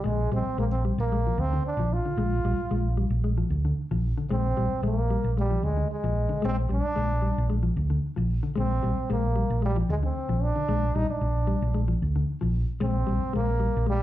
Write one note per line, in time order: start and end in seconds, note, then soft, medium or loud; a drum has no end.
0.04 0.26 A#1 loud
0.04 0.19 G#3 medium
0.04 0.32 G#3 medium
0.32 0.43 A#1 medium
0.32 0.46 G3 medium
0.32 0.58 C4 loud
0.46 muted fingered electric bass stroke soft
0.58 0.90 A#1 medium
0.58 0.73 G#3 medium
0.58 0.65 A#3 medium
0.71 0.84 C4 medium
0.85 0.99 G3 medium
0.98 1.29 A#1 medium
0.98 1.41 A#3 medium
1.12 1.20 G#3 medium
1.27 1.41 F3 medium
1.38 1.59 D2 medium
1.38 1.66 C4 loud
1.53 1.67 D3 medium
1.67 1.95 D4 medium
1.77 1.99 A#1 medium
1.77 1.94 F3 medium
1.93 2.99 F4 medium
2.06 2.12 D3 medium
2.17 2.38 A#1 loud
2.17 2.33 G#3 medium
2.45 2.55 A#1 medium
2.45 2.59 G3 medium
2.71 3.03 A#1 medium
2.71 2.86 G#3 medium
2.97 3.12 G3 medium
3.10 3.42 A#1 medium
3.24 3.32 G#3 medium
3.38 3.52 F3 medium
3.50 3.71 D2 medium
3.65 3.79 D3 medium
3.91 4.12 A#1 medium
3.91 4.06 F3 medium
4.18 4.25 D3 medium
4.31 4.52 A#1 loud
4.31 4.45 G#3 medium
4.31 4.81 C4 medium
4.57 4.68 A#1 medium
4.57 4.72 G3 medium
4.72 muted fingered electric bass stroke soft
4.82 5.15 A#1 medium
4.82 4.98 G#3 medium
4.82 5.34 A#3 medium
5.10 5.25 G3 medium
5.24 5.55 A#1 medium
5.37 5.65 G3 medium
5.37 5.45 G#3 medium
5.51 5.65 F3 medium
5.63 5.84 D2 medium
5.63 5.90 G#3 loud
5.77 5.92 D3 medium
5.91 6.40 G#3 medium
6.04 6.25 A#1 medium
6.04 6.18 F3 medium
6.29 6.37 D3 medium
6.42 6.65 A#1 loud
6.42 6.57 G#3 medium
6.42 6.56 C4 loud
6.69 6.81 A#1 medium
6.69 6.84 G3 medium
6.69 7.47 D4 loud
6.85 muted fingered electric bass stroke soft
6.96 7.29 A#1 loud
6.96 7.11 G#3 medium
7.22 7.37 G3 medium
7.38 7.69 A#1 loud
7.50 7.57 G#3 medium
7.63 7.78 F3 medium
7.77 7.98 D2 medium
7.90 8.05 D3 medium
8.16 8.38 A#1 medium
8.16 8.31 F3 medium
8.43 8.50 D3 medium
8.55 8.78 A#1 loud
8.55 8.70 G#3 medium
8.55 9.07 C4 medium
8.83 8.94 A#1 medium
8.83 8.97 G3 medium
8.97 muted fingered electric bass stroke soft
9.10 9.42 A#1 loud
9.10 9.24 G#3 medium
9.10 9.60 A#3 medium
9.36 9.50 G3 medium
9.50 9.81 A#1 medium
9.62 9.77 G3 medium
9.62 9.70 G#3 medium
9.76 9.91 F3 medium
9.89 10.10 D2 medium
9.89 9.96 G#3 medium
10.03 10.18 D3 medium
10.03 10.44 C4 medium
10.29 10.50 A#1 medium
10.29 10.44 F3 medium
10.43 10.98 D4 loud
10.56 10.63 D3 medium
10.68 10.90 A#1 loud
10.68 10.83 G#3 medium
10.95 11.07 A#1 medium
10.95 11.10 G3 medium
10.95 11.09 D#4 loud
11.09 11.86 D4 medium
11.09 muted fingered electric bass stroke soft
11.21 11.54 A#1 medium
11.47 11.62 G3 medium
11.62 11.93 A#1 loud
11.75 11.82 G#3 medium
11.88 12.03 F3 medium
12.02 12.23 D2 medium
12.16 12.30 D3 medium
12.41 12.63 A#1 medium
12.41 12.56 F3 medium
12.80 13.02 A#1 loud
12.80 12.95 G#3 medium
12.80 13.31 C4 medium
13.07 13.19 A#1 medium
13.07 13.22 G3 medium
13.23 muted fingered electric bass stroke soft
13.33 13.67 A#1 medium
13.33 13.48 G#3 medium
13.33 13.85 A#3 medium
13.60 13.75 G3 medium
13.77 14.03 A#1 medium
13.87 14.03 G3 loud
13.87 13.95 G#3 medium